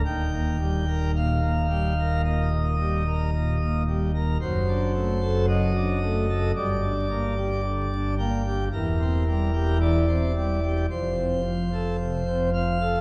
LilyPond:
<<
  \new Staff \with { instrumentName = "Pipe organ" } { \time 4/4 \key ees \lydian \tempo 4 = 55 g''4 f''4 ees''4. r8 | c''4 ees''4 d''4. g''8 | bes'4 d''4 c''4. f''8 | }
  \new Staff \with { instrumentName = "Pipe organ" } { \time 4/4 \key ees \lydian << { ees,16 bes16 g16 bes'16 bes,16 bes16 g16 bes'16 bes,16 bes16 g16 bes'16 bes,16 bes16 g16 bes'16 | fis,16 d'16 a16 a'16 fis16 d'16 a16 a'16 g,16 d'16 bes16 g'16 d16 d'16 bes16 g'16 | e,16 c'16 g16 g'16 e16 c'16 g16 g'16 f,16 c'16 f16 a'16 c16 c'16 f16 a'16 | } \\ { ees,,1 | fis,,2 g,,2 | e,,2 f,,2 | } >> }
>>